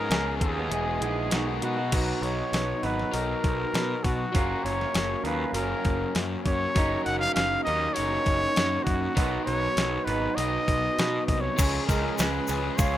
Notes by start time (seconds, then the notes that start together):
Already playing: B3 G#4 A#4
0.08 C#2 C#3 F3 G#3 B3 C#4 G#4, closed hi-hat
0.12 G#4, snare
0.25 G#3 B3 G#4
0.36 F3 B3 C#4 G#4
0.41 D#2 G#4, muted clean electric guitar stroke, kick, closed hi-hat
0.54 B3 C#4 G#4
0.58 G#3
0.68 E1 E2 B2 E3 G#3 B3 E4 G#4, closed hi-hat
0.72 B3 G#4
0.82 B3 E4 G#4
0.87 G#3 B3
1.00 A#1 D#3 E3 G#3 B3 E4 G#4, closed hi-hat
1.30 B1 B2 D#3 F#3 G#3 B3 D#4 F#4, snare, closed hi-hat
1.46 G#3 B3 D#4 F#4
1.62 B2 F#3 B3 D#4 F#4, closed hi-hat
1.77 G#3 B3 D#4 F#4
1.91 B1 B2 F#3 B3 D#4 F#4, kick, open hi-hat, crash
2.21 B1 C#5, open hi-hat
2.53 B1, snare, open hi-hat
2.83 G#1 B2 F#3 D#4 F#4 B4, open hi-hat
2.99 snare
3.11 B1 F#3 B3 D#4 A#4, open hi-hat
3.44 B1, kick, open hi-hat
3.74 B2, snare, open hi-hat
4.04 B2 F#4, kick, open hi-hat
4.32 F#1 F#3 A#3 C#4 F4, kick, open hi-hat
4.36 A#4
4.64 F#1 C#5, open hi-hat
4.81 snare
4.95 F#1, snare, open hi-hat
5.24 D#2 F#3 C#4 F4 A#4 B4, open hi-hat
5.53 F#1 F#3 A#3 A#4, open hi-hat
5.58 C#4
5.85 F#1, kick, open hi-hat
6.15 F#2, snare, open hi-hat
6.45 F#2 C#5, kick, open hi-hat
6.75 F#1 F#3 A#3 C#4 D#4 A#4, kick, open hi-hat
7.05 F#1 F#5, open hi-hat
7.19 F5, snare
7.35 F#1 F5, snare, open hi-hat
7.64 D#4 A#4 D#5, open hi-hat
7.68 D#2 F#3 C#4
7.94 F#3 A#3 D#4 C#5, open hi-hat
7.98 F#1
8.26 F#1, kick, open hi-hat
8.56 F#2, snare, open hi-hat
8.83 F#4, kick, open hi-hat
8.87 F#2
9.15 B1 B2 D#3 F#3 B3 D#4 B4, kick, open hi-hat
9.45 B1 C#5, open hi-hat
9.77 B1, snare, open hi-hat
10.05 G#1 D#3 F#3 B3 D#4 B4, open hi-hat
10.09 B2
10.35 B1 F#3 B3 D#5, open hi-hat
10.40 D#4
10.68 B1, kick, open hi-hat
10.99 B2, snare, open hi-hat
11.26 C2 D#5, kick, open hi-hat
11.41 C#5
11.56 C#2 C#3 F3 G#3 C#4 G#4, kick, crash, ride, shaker
11.86 C#2 F3 G#3 C#4 G#4 A#4, kick, ride, shaker
12.02 G#3 C#4 G#4
12.17 C#2 F3 G#3 C#4 B4, snare, ride, shaker
12.21 G#4
12.47 C#2 F3 G#3 C#4 G#4, ride, shaker
12.52 G#4
12.63 G#3 C#4 G#4
12.76 C#2 F4 C#5, kick, ride, shaker
12.94 G#4